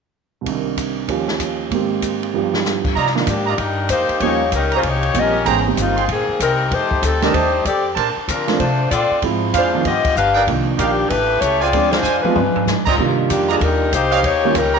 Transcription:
0.41 grand piano C2 C3
0.46 grand piano D#3 D4, kick, ride
0.52 grand piano A#4
0.77 kick, hi-hat pedal, ride
1.08 grand piano D#2 D#3 F3 C#4 G4, kick, ride
1.28 snare
1.40 kick, hi-hat pedal, ride
1.69 grand piano G#2 D#3 A#3 C4, kick, ride
1.75 grand piano G4
2.02 kick, hi-hat pedal, ride
2.23 ride
2.34 grand piano G2 F3 B3 D4 G4
2.54 snare
2.65 snare, hi-hat pedal
2.85 kick, crash
2.95 upright bass C3, trumpet section F4 D5 D#5 A#5, kick
3.06 snare
3.15 grand piano D#3 F3 A#3 D4, snare
3.27 upright bass G#2, saxophone section D#3 A#3 D4 G4, kick, hi-hat pedal, ride
3.47 trumpet section F4 D5 D#5 A#5
3.58 upright bass G2, saxophone section G3 D4 D#4 A#4, kick, ride
3.89 upright bass F2, saxophone section A#3 D#4 G4 C5, kick, hi-hat pedal, ride
4.09 muted upright bass stroke, ride
4.20 upright bass D#2, grand piano F3 G3 A#3 C#4, saxophone section A#3 D#4 G4 C#5, kick, ride
4.52 upright bass C#2, saxophone section G3 D#4 A#4, kick, hi-hat pedal, ride
4.56 saxophone section C#4
4.72 trumpet section G4 C#5 D#5 A#5, ride
4.76 saxophone section G#3 C#4 F4 C5
4.83 upright bass C2, kick, ride
4.87 saxophone section A#3 D#4 G4 C#5
5.03 ride
5.14 upright bass A#1, grand piano F3 G3 A#3 C4, kick, hi-hat pedal, ride
5.19 saxophone section C#4 G4 A#4 D#5
5.45 upright bass G#1, grand piano E3 G#3 B3 C#4, trumpet section G#4 C5 G5 A#5, kick, ride
5.67 grand piano D#3 G3 A#3 C4
5.77 upright bass G1, kick, hi-hat pedal, ride
5.81 saxophone section A#3 C4 D#4 F4
5.97 trumpet section G#4 C5 G5 C6, ride
6.08 upright bass A#1, kick, ride
6.13 saxophone section D#3 A#3 C4 G#4
6.28 muted upright bass stroke
6.40 upright bass C2, saxophone section G3 C4 D#4 A#4, kick, hi-hat pedal, ride
6.71 upright bass F2, saxophone section A3 D#4 G4 C5, kick, ride
6.91 kick
7.02 upright bass D2, saxophone section G3 C4 D#4 A4, kick, hi-hat pedal, ride
7.22 grand piano D#3 G3 A3 D4, saxophone section G3 C4 D#4 A#4, trumpet section G4 D5 D#5 A5, snare, ride
7.33 upright bass D#2, saxophone section A3 D#4 G4 C5, kick, ride
7.65 upright bass F2, saxophone section C4 G4 A4 D5, kick, hi-hat pedal, ride
7.95 upright bass A#2, trumpet section D4 A#4 C5 A5, kick, ride
8.16 muted upright bass stroke
8.28 upright bass D3, saxophone section F3 C4 D4 A#4, kick, hi-hat pedal, ride
8.47 grand piano F3 A3 C4 D4, snare, ride
8.59 upright bass C3, saxophone section A3 D4 F4 C5, kick, ride
8.90 upright bass A#2, saxophone section C4 F4 A4 D5, kick, hi-hat pedal, ride
9.11 muted upright bass stroke
9.22 upright bass G#2, grand piano F3 G#3 C4 E4, kick, ride
9.53 upright bass F2, trumpet section D4 G#4 C5 F5, saxophone section D4, kick, hi-hat pedal, ride
9.58 saxophone section G#3 F4 C5
9.74 grand piano D#3 F3 B3 D4
9.85 upright bass G2, saxophone section B3 F4 G4 D#5, kick, ride
10.04 muted upright bass stroke, kick, ride
10.16 upright bass G1, saxophone section D4 G4 B4 F5, kick, hi-hat pedal
10.35 trumpet section D#4 A#4 D5 G5
10.47 upright bass C2, grand piano D#3 F3 A#3 D4, kick, ride
10.78 upright bass A#1, saxophone section D#3 A#3 D4 G4, trumpet section D#4 A#4 D5 F5, kick, hi-hat pedal, ride
11.10 upright bass A1, saxophone section A3 E4 G4 B4, kick, ride
11.41 upright bass C#2, saxophone section A3 E4 G4 C#5, kick, hi-hat pedal, ride
11.60 saxophone section C4 F4 G#4 D5, trumpet section F4 C5 D5 G#5
11.73 upright bass D2, grand piano F3 G#3 C4 D4, kick, ride
11.92 saxophone section G#3 D4 F4 C5, snare, ride
12.03 upright bass F2, trumpet section F4 C5 D5 G#5, hi-hat pedal
12.23 grand piano F3 G#3 B3 F4, saxophone section G#3 D4 F4 B4, muted upright bass stroke, high tom
12.35 upright bass G2, high tom
12.55 muted upright bass stroke, floor tom
12.66 upright bass G#2, snare, hi-hat pedal
12.86 trumpet section C4 F4 D5 D#5 A#5, kick, crash
12.98 upright bass C3, grand piano D#3 G3 A#3 D4 F4, kick
13.29 upright bass F2, saxophone section D#3 A#3 D4 G4, kick, hi-hat pedal, ride
13.49 saxophone section F3 A#3 D4 G#4, trumpet section F4 D5 D#5 A#5, ride
13.61 upright bass D#2, saxophone section G3 D4 D#4 A#4, kick, ride
13.92 upright bass C2, saxophone section A#3 D#4 G4 C5, kick, hi-hat pedal, ride
14.12 trumpet section G4 C#5 D#5 F5, ride
14.23 upright bass D#2, saxophone section A#3 D#4 G4 C#5, kick, ride
14.44 grand piano D#3 G3 A#3 C#4 F4
14.55 upright bass C#2, saxophone section G3 D#4 A#4, kick, hi-hat pedal, ride
14.59 saxophone section C#4
14.74 trumpet section G4 C#5 D#5 A#5

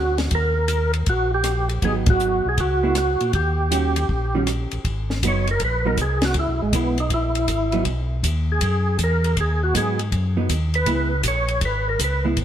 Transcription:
Already playing: tonewheel organ D2 F#4
0.18 snare, ride
0.31 tonewheel organ D#2, kick, ride
0.35 tonewheel organ A#4
0.68 hi-hat pedal, ride
0.94 ride
1.06 tonewheel organ A#1 F#4, kick, ride
1.34 tonewheel organ G4
1.44 cross-stick, hi-hat pedal, ride
1.69 ride
1.82 tonewheel organ G#1 G#4, hollow-body jazz guitar F#3 B3 D#4, kick, ride
2.06 tonewheel organ F#4, kick, ride
2.20 hi-hat pedal
2.45 tonewheel organ B1 G#4
2.58 tonewheel organ C#2 F#4, kick, ride
2.83 hollow-body jazz guitar G#3 B3 E4
2.95 tonewheel organ F#4, cross-stick, hi-hat pedal, ride
3.20 tonewheel organ A#2, ride
3.33 tonewheel organ D#2 G4, kick, ride
3.71 hollow-body jazz guitar D#3 G3 C#4 F#4, hi-hat pedal, ride
3.96 ride
4.09 tonewheel organ A#1, kick
4.35 hollow-body jazz guitar D#3 G3 C#4 F#4
4.47 cross-stick, hi-hat pedal, ride
4.71 tonewheel organ A#1, ride
4.85 tonewheel organ G#1, kick, ride
5.10 snare
5.23 tonewheel organ F#1, hollow-body jazz guitar F#3 B3 D#4, kick, hi-hat pedal, ride
5.28 tonewheel organ C#5
5.47 tonewheel organ A#4, ride
5.60 tonewheel organ A#1, kick, ride
5.65 tonewheel organ B4
5.85 hollow-body jazz guitar F#3 B3 D#4, tonewheel organ A#4
5.97 tonewheel organ C2, kick, hi-hat pedal, ride
6.01 tonewheel organ G#4
6.22 tonewheel organ F#4, snare, ride
6.34 tonewheel organ C#2, kick, ride
6.39 tonewheel organ E4
6.48 tonewheel organ B1
6.62 tonewheel organ G#1 G#3
6.73 tonewheel organ B1 B3, hollow-body jazz guitar G#3 B3 E4, kick, hi-hat pedal, ride
6.98 tonewheel organ D#4, ride
7.10 tonewheel organ A#1 E4, kick, ride
7.35 ride
7.48 tonewheel organ G#1, kick, hi-hat pedal, ride
7.72 hollow-body jazz guitar F#3 B3 D#4, ride
7.85 tonewheel organ B1, kick, ride
8.23 tonewheel organ D#2, kick, hi-hat pedal, ride
8.52 tonewheel organ G#4
8.61 tonewheel organ F#2, kick, ride
8.99 tonewheel organ E2, kick, hi-hat pedal, ride
9.04 tonewheel organ A#4
9.24 ride
9.37 tonewheel organ D#2 G#4, kick, ride
9.63 tonewheel organ F#4
9.74 tonewheel organ G#2 G#4, hollow-body jazz guitar F#3 B3 D#4, kick, hi-hat pedal, ride
9.99 ride
10.12 tonewheel organ F#2, kick, ride
10.37 hollow-body jazz guitar F#3 B3 D#4
10.49 tonewheel organ D#2, kick, hi-hat pedal, ride
10.74 tonewheel organ B4, ride
10.86 tonewheel organ C#2, hollow-body jazz guitar G#3 B3 E4, kick, ride
11.23 tonewheel organ A#1, kick, hi-hat pedal, ride
11.28 tonewheel organ C#5
11.48 ride
11.61 tonewheel organ G#1, kick, ride
11.65 tonewheel organ B4
11.89 tonewheel organ A#4
11.99 tonewheel organ C#2, kick, hi-hat pedal, ride
12.04 tonewheel organ B4
12.25 hollow-body jazz guitar G#3 B3 E4
12.37 tonewheel organ G#1, kick, ride

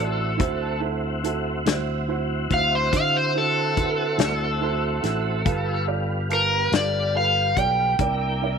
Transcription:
Already playing: fingered electric bass A1, tonewheel organ C4 E4 F#4, grand piano E4 F#4 D5, electric slide guitar A4
0.37 fingered electric bass D2, tonewheel organ C4 E4 F#4, grand piano E4 F#4 C5, kick, closed hi-hat
0.80 grand piano E4 F#4 A4
1.24 grand piano E4 F#4 A4, closed hi-hat
1.66 fingered electric bass D2, grand piano E4 F#4 C5, snare, closed hi-hat
2.08 grand piano E4 F#4 C5
2.50 fingered electric bass D2, grand piano E4 F#4 C5, electric slide guitar F5, kick, closed hi-hat
2.75 electric slide guitar C5
2.93 fingered electric bass D3, grand piano E4 F#4 C5, electric slide guitar F5, kick, closed hi-hat
3.17 electric slide guitar C5
3.34 grand piano E4 F#4 C5, electric slide guitar A4
3.76 grand piano E4 F#4 B4, kick, closed hi-hat
4.18 fingered electric bass D2, grand piano E4 F#4 D5, snare, closed hi-hat
4.61 grand piano E4 F#4 C5 A5
5.03 fingered electric bass A1, grand piano E4 F#4 A4 E5, snare, closed hi-hat
5.45 fingered electric bass G1, tonewheel organ G3 B3 F4, grand piano F4 A4 B4, kick, closed hi-hat
5.87 grand piano F4 A4 D5
6.29 grand piano B3 F4 A5, electric slide guitar A#4, closed hi-hat
6.72 fingered electric bass G1, grand piano F4 A4 B4, snare, closed hi-hat
6.76 electric slide guitar D5
7.14 grand piano F4 A4 B4, electric slide guitar F5
7.57 fingered electric bass B1, grand piano F4 A4 D5, electric slide guitar G5, kick, closed hi-hat
7.99 fingered electric bass C2, tonewheel organ A#3 D4 E4, grand piano E4 A#4 D5, kick, closed hi-hat
8.42 grand piano E4 A#4 D5

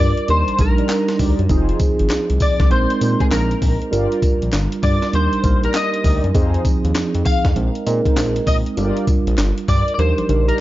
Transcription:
Already playing: tine electric piano G3 D4 F4 A#4
0.00 analog synth bass G2, clean electric guitar D5
0.17 closed hi-hat
0.28 analog synth bass D#2, tine electric piano G3 D4 D#4 A#4, clean electric guitar C5, closed hi-hat
0.48 analog synth bass A#1, closed hi-hat
0.58 analog synth bass A#1, tine electric piano G3 D4 D#4 A#4, clean electric guitar A#4, kick, closed hi-hat, tambourine
0.77 analog polysynth D#4 G4 A#4 D5, closed hi-hat
0.89 snare, clap, closed hi-hat, tambourine
1.08 snare, closed hi-hat
1.19 analog synth bass D2, analog polysynth D#4 G4 A#4 D5, kick, open hi-hat, tambourine
1.39 analog synth bass F#2, closed hi-hat
1.49 analog synth bass F1, tine electric piano F3 C4 D#4 G#4, analog polysynth D#4 F4 G#4 C5, kick, closed hi-hat, tambourine
1.69 closed hi-hat
1.79 kick, closed hi-hat, tambourine
1.99 analog synth bass G#1, closed hi-hat
2.10 analog synth bass C2, snare, clap, closed hi-hat, tambourine
2.30 analog synth bass C2, closed hi-hat
2.40 clean electric guitar D5, kick, open hi-hat, tambourine
2.60 analog synth bass C2, kick, snare, closed hi-hat
2.70 analog synth bass A#1, tine electric piano G#3 C4 D#4 A#4, clean electric guitar C5, closed hi-hat
2.90 closed hi-hat
3.01 analog synth bass A#2, tine electric piano G#3 C4 D#4 A#4, closed hi-hat, tambourine
3.20 analog polysynth D#4 G#4 A#4 C5, clean electric guitar G#4, kick, closed hi-hat
3.31 analog synth bass A#1, clean electric guitar A#4, snare, clap, closed hi-hat, tambourine
3.51 closed hi-hat
3.62 analog synth bass A#1, kick, open hi-hat, tambourine
3.82 closed hi-hat
3.91 analog synth bass G1, tine electric piano G3 D4 F4 A#4, analog polysynth F4 G4 A#4 D5, closed hi-hat, tambourine
4.12 closed hi-hat
4.22 kick, closed hi-hat, tambourine
4.42 analog synth bass A#1, closed hi-hat
4.52 analog synth bass G1, snare, clap, closed hi-hat, tambourine
4.72 closed hi-hat
4.83 analog synth bass G2, clean electric guitar D5, kick, open hi-hat, tambourine
5.02 snare, closed hi-hat
5.13 analog synth bass D#2, tine electric piano G3 D4 D#4 A#4, clean electric guitar C5, closed hi-hat
5.33 analog synth bass A#1, closed hi-hat
5.43 analog synth bass A#1, tine electric piano G3 A#3 D#4 A#4, kick, closed hi-hat, tambourine
5.62 analog polysynth D#4 G4 A#4 D5, clean electric guitar A#4, closed hi-hat
5.74 clean electric guitar D#5, snare, clap, closed hi-hat, tambourine
5.94 closed hi-hat
6.03 analog synth bass D2, analog polysynth D#4 G4 A#4 D5, kick, open hi-hat, tambourine
6.24 analog synth bass F#2, closed hi-hat
6.34 analog synth bass F2, tine electric piano F3 C4 D#4 G#4, analog polysynth D#4 F4 G#4 C5, kick, closed hi-hat, tambourine
6.54 closed hi-hat
6.65 kick, closed hi-hat, tambourine
6.84 analog synth bass D#2, closed hi-hat
6.95 analog synth bass F2, snare, clap, closed hi-hat, tambourine
7.15 analog synth bass F2, closed hi-hat
7.25 clean electric guitar F5, kick, open hi-hat, tambourine
7.45 analog synth bass F2, kick, snare, closed hi-hat
7.56 analog synth bass A#1, tine electric piano G#3 C4 D#4 A#4, closed hi-hat
7.75 closed hi-hat
7.86 analog synth bass A#2, tine electric piano G#3 C4 D#4 A#4, closed hi-hat, tambourine
8.05 analog polysynth D#4 G#4 A#4 C5, kick, closed hi-hat
8.17 analog synth bass A#1, snare, clap, closed hi-hat, tambourine
8.36 closed hi-hat
8.47 analog synth bass A#1, clean electric guitar D#5, kick, open hi-hat, tambourine
8.66 closed hi-hat
8.76 analog synth bass G1, tine electric piano G3 D4 F4 A4, analog polysynth F4 G4 A#4 D5, closed hi-hat, tambourine
8.85 tine electric piano A#4
8.97 closed hi-hat
9.07 kick, closed hi-hat, tambourine
9.27 analog synth bass A#1, closed hi-hat
9.37 analog synth bass G1, snare, clap, closed hi-hat, tambourine
9.58 closed hi-hat
9.68 analog synth bass G2, clean electric guitar D5, kick, open hi-hat, tambourine
9.88 closed hi-hat
9.94 clean electric guitar D5
9.98 analog synth bass D#2, tine electric piano G3 D4 D#4 A#4, clean electric guitar C5, closed hi-hat, high tom
10.18 analog synth bass A#1, closed hi-hat, high tom
10.29 analog synth bass A#1, tine electric piano G3 D4 D#4 A#4, closed hi-hat, mid tom
10.47 analog polysynth D#4 G4 A#4 D5, clean electric guitar A#4, closed hi-hat

